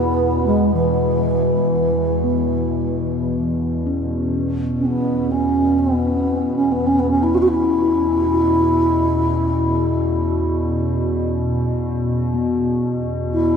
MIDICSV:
0, 0, Header, 1, 4, 480
1, 0, Start_track
1, 0, Tempo, 500000
1, 13024, End_track
2, 0, Start_track
2, 0, Title_t, "Bass flute"
2, 0, Program_c, 0, 73
2, 0, Note_on_c, 0, 59, 90
2, 433, Note_off_c, 0, 59, 0
2, 443, Note_on_c, 0, 56, 59
2, 681, Note_off_c, 0, 56, 0
2, 710, Note_on_c, 0, 52, 66
2, 3227, Note_off_c, 0, 52, 0
2, 4609, Note_on_c, 0, 61, 42
2, 4662, Note_on_c, 0, 59, 64
2, 4676, Note_off_c, 0, 61, 0
2, 5102, Note_on_c, 0, 61, 64
2, 5116, Note_off_c, 0, 59, 0
2, 5559, Note_on_c, 0, 59, 66
2, 5573, Note_off_c, 0, 61, 0
2, 6292, Note_off_c, 0, 59, 0
2, 6297, Note_on_c, 0, 61, 65
2, 6447, Note_on_c, 0, 59, 65
2, 6461, Note_off_c, 0, 61, 0
2, 6592, Note_on_c, 0, 61, 68
2, 6606, Note_off_c, 0, 59, 0
2, 6712, Note_on_c, 0, 59, 69
2, 6726, Note_off_c, 0, 61, 0
2, 6814, Note_off_c, 0, 59, 0
2, 6823, Note_on_c, 0, 61, 75
2, 6941, Note_on_c, 0, 64, 75
2, 6955, Note_off_c, 0, 61, 0
2, 7051, Note_on_c, 0, 66, 77
2, 7063, Note_off_c, 0, 64, 0
2, 7063, Note_on_c, 0, 64, 69
2, 7078, Note_off_c, 0, 66, 0
2, 7122, Note_on_c, 0, 66, 83
2, 7136, Note_off_c, 0, 64, 0
2, 7180, Note_on_c, 0, 64, 90
2, 7195, Note_off_c, 0, 66, 0
2, 10025, Note_off_c, 0, 64, 0
2, 12800, Note_on_c, 0, 64, 75
2, 13024, Note_off_c, 0, 64, 0
2, 13024, End_track
3, 0, Start_track
3, 0, Title_t, "Singing bowl"
3, 0, Program_c, 1, 14
3, 0, Note_on_c, 1, 64, 54
3, 2148, Note_on_c, 1, 59, 43
3, 3631, Note_off_c, 1, 64, 0
3, 3712, Note_on_c, 1, 61, 52
3, 4032, Note_off_c, 1, 59, 0
3, 10763, Note_off_c, 1, 61, 0
3, 11848, Note_on_c, 1, 59, 52
3, 13024, Note_off_c, 1, 59, 0
3, 13024, End_track
4, 0, Start_track
4, 0, Title_t, "Ambient pad"
4, 0, Program_c, 2, 92
4, 0, Note_on_c, 2, 40, 68
4, 0, Note_on_c, 2, 47, 63
4, 3610, Note_off_c, 2, 40, 0
4, 3610, Note_off_c, 2, 47, 0
4, 3622, Note_on_c, 2, 40, 62
4, 3622, Note_on_c, 2, 47, 67
4, 13024, Note_off_c, 2, 40, 0
4, 13024, Note_off_c, 2, 47, 0
4, 13024, End_track
0, 0, End_of_file